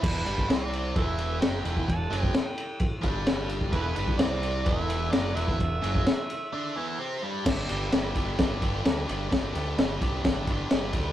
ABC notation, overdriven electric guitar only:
X:1
M:4/4
L:1/8
Q:1/4=129
K:Em
V:1 name="Overdriven electric guitar" clef=bass
[E,,E,] [G,,G,] [C,C]2 [E,,E,]2 [F,,F,] [E,,E,] | E,, [F,,F,] z3 [G,,G,]3 | [E,,E,] [G,,G,] [C,C]2 [E,,E,]2 [F,,F,] [E,,E,] | E,, [F,,F,] z2 [D,D] [E,,E,] [C,C] [G,,G,] |
[G,,D,G,B,DG] [G,,D,G,B,DG] [G,,D,G,B,DG] [G,,D,G,B,DG] [G,,D,G,B,DG] [G,,D,G,B,DG] [G,,D,G,B,DG] [G,,D,G,B,DG] | [G,,D,G,B,DG] [G,,D,G,B,DG] [G,,D,G,B,DG] [G,,D,G,B,DG] [G,,D,G,B,DG] [G,,D,G,B,DG] [G,,D,G,B,DG] [G,,D,G,B,DG] |]